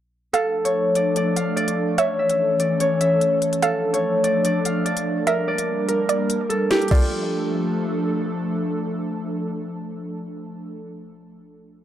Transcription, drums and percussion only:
0.34 closed hi-hat
0.65 closed hi-hat
0.95 closed hi-hat
1.16 closed hi-hat
1.36 closed hi-hat
1.57 closed hi-hat
1.68 closed hi-hat
1.98 closed hi-hat
2.30 closed hi-hat
2.60 closed hi-hat
2.80 closed hi-hat
3.01 closed hi-hat
3.21 closed hi-hat
3.42 closed hi-hat
3.53 closed hi-hat
3.62 closed hi-hat
3.94 closed hi-hat
4.24 closed hi-hat
4.45 closed hi-hat
4.65 closed hi-hat
4.86 closed hi-hat
4.97 closed hi-hat
5.27 closed hi-hat
5.58 closed hi-hat
5.89 closed hi-hat
6.09 closed hi-hat
6.30 closed hi-hat
6.50 closed hi-hat
6.71 snare, closed hi-hat
6.82 closed hi-hat
6.88 kick, closed hi-hat, crash
6.95 closed hi-hat

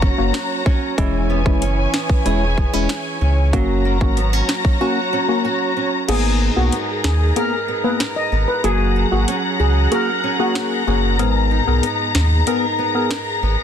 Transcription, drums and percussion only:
0.02 kick
0.34 finger snap, snare
0.66 kick
0.98 kick, closed hi-hat
1.46 kick
1.62 closed hi-hat
1.94 finger snap, snare
2.10 kick
2.26 closed hi-hat
2.58 kick
2.89 finger snap, snare, closed hi-hat
3.53 kick, closed hi-hat
4.01 kick
4.17 closed hi-hat
4.49 finger snap, snare
4.65 kick
6.09 closed hi-hat, crash
6.72 closed hi-hat
7.04 finger snap, snare
7.36 closed hi-hat
8.00 finger snap, snare, closed hi-hat
8.64 closed hi-hat
9.28 closed hi-hat
9.92 closed hi-hat
10.55 finger snap, snare, closed hi-hat
11.19 closed hi-hat
11.83 closed hi-hat
12.15 finger snap, snare
12.47 closed hi-hat
13.11 finger snap, snare, closed hi-hat

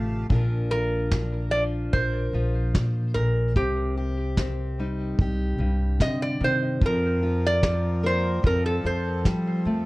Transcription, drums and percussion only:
0.30 kick
1.11 kick, snare
1.93 kick
2.75 kick, snare
3.56 kick
4.37 kick, snare
5.19 kick
6.00 kick, snare
6.82 kick
7.63 kick, snare
8.44 kick
9.25 kick, snare

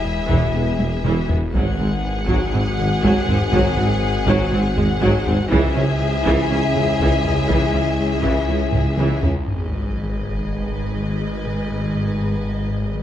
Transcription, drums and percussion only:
0.30 taiko
0.79 taiko high
1.04 taiko mid
1.29 taiko low
1.54 taiko
2.29 taiko
2.79 taiko low
3.04 taiko
3.29 taiko low
3.53 taiko
4.28 taiko
4.77 taiko low
5.02 taiko
5.27 taiko low
5.52 taiko
6.25 taiko
6.76 taiko low
7.00 taiko
7.25 taiko low
7.49 taiko
8.24 taiko
8.73 taiko low-mid
8.98 taiko high
9.23 taiko low
9.48 taiko

